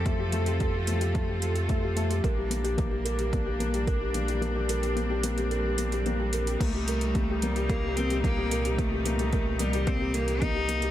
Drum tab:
CC |----------------|----------------|----------------|x---------------|
HH |x-xxx-xxx-xxx-xx|x-xxx-xxx-xxx-xx|x-xxx-xxx-xxx-xx|x-xxx-xxx-xxx-xx|
BD |o---o---o---o---|o---o---o---o---|----------------|o---o---o---o---|

CC |----------------|
HH |x-xxx-xxx-xxx-xx|
BD |o---o---o---o---|